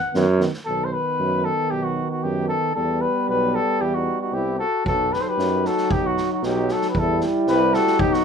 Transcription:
Already playing: F#5
0.14 F#2 D#3 B3, snare
0.38 D#3 B3, snare
0.53 snare
0.65 B1 D#3 B3 A4
0.85 C5
0.93 B4
1.19 F#2
1.44 A4
1.71 B1 G4
1.83 F#4
2.11 F#4
2.23 F#2 G4
2.49 A4
2.75 E2 G3 B3 A4
3.01 B4
3.29 B1 B4
3.55 A4
3.80 E2 E4 G4
3.95 D#4 F#4
4.21 D#4 F#4
4.32 C2 E4 G4
4.59 F#4 A4
4.84 B1 F#3 D#4 F#4 A4, kick
5.13 G4 B4, snare
5.21 A4 C5
5.29 G4 B4
5.38 F#2, snare
5.65 F#4 A4, snare
5.77 snare
5.91 B1 D#4 G4, kick
6.06 D#4 F#4
6.17 snare
6.33 D#4 F#4
6.42 B1 D#4 G4, snare
6.69 F#4 A4, snare
6.81 snare
6.90 G4 B4
6.94 E2 G3 E4 A4, kick
7.01 E4
7.21 snare
7.47 C2 G4 B4, snare
7.74 F#4 A4, snare
7.87 snare
7.99 B1 F#3 D#4 G4, kick
8.13 D#4 F#4, snare

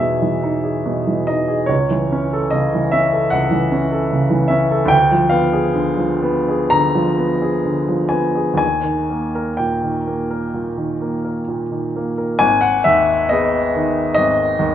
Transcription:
Already playing: E2 E3 D#4 G#4 B4 C#5 E5
0.00 B2
0.22 E3
0.43 D#4
0.64 G#4
0.86 B2
1.07 E3
1.27 D#4 D#5
1.48 G#4
1.66 C#2 C#5
1.90 E3
2.12 C#4
2.33 A4
2.50 C#3 D#5
2.74 E3
2.91 C#4 E5
3.13 A4
3.30 C#2 F#5
3.51 E3
3.72 C#4
3.92 A4
4.11 C#3
4.30 E3
4.48 C#4 E5
4.71 A4
4.86 D2 G5
5.11 F3
5.29 B3 F5
5.53 G#4
5.75 D3
5.97 F3
6.22 B3
6.48 G#4
6.70 D3 A#5
6.95 F3
7.18 B3
7.42 G#4
7.65 D3
7.89 F3
8.09 B3 G#5
8.35 G#4
8.54 D#2 G#5
8.84 D#3
9.10 A#3
9.35 A#4
9.57 A#2 G5
9.83 D#3
10.07 A#3
10.31 A#4
10.54 A#2
10.77 D#3
11.02 A#3
11.25 A#4
11.48 A#2
11.71 D#3
11.96 A#3
12.18 A#4
12.39 G#1 G#5
12.61 F#5
12.84 D#2 E5
13.29 B3 G#4 D#5
13.76 D#3
14.14 G#1 D#5
14.59 D#2

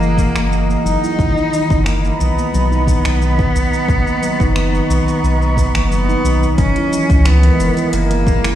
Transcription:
Already playing: F#1 E3 A#3 G#4 D#5 F#5 A#5
0.03 shaker
0.18 kick, shaker
0.36 F#1, finger snap, shaker
0.52 shaker
0.69 A#3, shaker
0.85 F#1 F#3 D#4, shaker
1.03 E4, shaker
1.19 B1 D#3 A#5 B5, kick, shaker
1.38 shaker
1.52 D#3, shaker
1.70 F#1, kick, shaker
1.86 A#3, finger snap, shaker
2.05 shaker
2.20 B1 B3, shaker
2.38 A#3, shaker
2.54 B1 F#3, shaker
2.72 D#4, shaker
2.87 D#3, kick, shaker
3.05 B1, finger snap, shaker
3.21 D#3, shaker
3.39 kick, shaker
3.55 B1, shaker
3.73 shaker
3.88 B1 C#6, kick, shaker
4.06 A#3, shaker
4.22 F#3, shaker
4.40 F#1 D#4, kick, shaker
4.56 D#3, finger snap, shaker
4.74 shaker
4.89 B1 D#3, shaker
5.08 shaker
5.23 B1, shaker
5.42 shaker
5.57 kick, shaker
5.75 F#1 A#3, finger snap, shaker
5.90 F#3 B3, shaker
6.09 D#4, shaker
6.24 B1 D#3, shaker
6.43 shaker
6.58 F#1 F#3 G#3 C#4 E4 A#4 D#5, kick, closed hi-hat, shaker
6.76 E4, closed hi-hat
6.92 E3, shaker
7.10 C#2, kick, closed hi-hat, shaker
7.26 E3 B3, finger snap, closed hi-hat, shaker
7.43 closed hi-hat
7.59 F#1, shaker
7.77 closed hi-hat, shaker
7.93 F#1 A#3, closed hi-hat, shaker
8.11 A#3, closed hi-hat
8.27 F#3, kick, shaker
8.44 F#1 E4, finger snap, shaker

